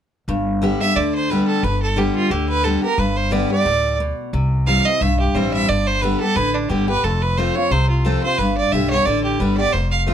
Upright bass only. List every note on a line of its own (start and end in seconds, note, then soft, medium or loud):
0.28 0.73 G1 medium
0.96 1.41 D2 medium
1.63 2.08 G1 medium
2.30 2.76 D2 medium
2.98 3.43 G1 medium
3.65 4.11 D2 medium
4.33 4.78 C2 medium
5.01 5.30 B1 medium
5.35 5.63 A1 medium
5.69 6.14 G1 medium
6.36 6.65 A1 medium
6.70 6.98 G1 medium
7.04 7.49 F1 medium
7.71 8.16 C2 medium
8.38 8.61 G1 medium
8.72 9.01 B1 medium
9.06 9.35 A1 medium
9.40 9.68 G1 medium
9.74 10.14 F1 medium